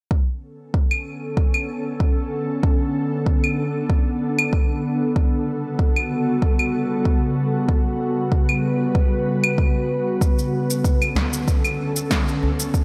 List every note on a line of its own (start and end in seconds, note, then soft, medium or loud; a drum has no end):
0.11 5.12 D3 medium
0.11 12.84 B3 medium
0.11 2.61 C#4 medium
0.11 5.12 A4 medium
0.11 kick loud
0.74 kick medium
0.91 claves medium
1.37 kick medium
1.54 claves medium
2.00 kick medium
2.63 5.13 D4 medium
2.63 kick loud
3.26 kick medium
3.44 claves soft
3.90 kick medium
4.39 claves medium
4.53 kick medium
5.16 10.18 C#3 medium
5.16 10.18 G3 medium
5.16 10.18 F#4 medium
5.16 7.66 A4 medium
5.16 kick loud
5.79 kick medium
5.96 claves medium
6.42 kick medium
6.59 claves soft
7.05 kick medium
7.68 10.19 B4 medium
7.68 kick loud
8.32 kick medium
8.49 claves medium
8.95 kick medium
9.44 claves medium
9.58 kick medium
10.21 12.84 D3 medium
10.21 12.84 C#4 medium
10.21 12.72 A4 medium
10.21 kick medium
10.21 shaker medium
10.39 shaker soft
10.70 shaker medium
10.85 kick medium
10.85 shaker soft
11.02 claves medium
11.02 shaker soft
11.15 snare medium
11.15 udu medium
11.33 shaker medium
11.48 kick medium
11.48 shaker soft
11.65 claves medium
11.65 shaker soft
11.96 shaker medium
12.11 kick medium
12.11 snare medium
12.11 shaker soft
12.28 shaker soft
12.43 udu medium
12.60 shaker medium
12.74 kick medium
12.74 shaker soft